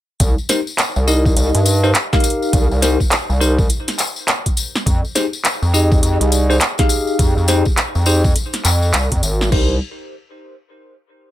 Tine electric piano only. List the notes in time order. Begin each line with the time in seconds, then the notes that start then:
0.49 D#4 G4 A#4 C5
1.07 D#4 G4 A#4 D#5
1.83 D#4 G4 A#4 C5
2.13 D#4 G4 A#4 F5
2.82 D#4 G4 A#4 C5
3.40 D#4 G4 A#4 C5
5.15 D#4 G4 G#4 C5
5.74 D#4 G4 G#4 D#5
6.50 D#4 G4 G#4 C5
6.79 D#4 G4 G#4 F5
7.48 D#4 G4 G#4 C5
8.06 D#4 G4 G#4 C5
9.52 D#4 G4 A#4 C5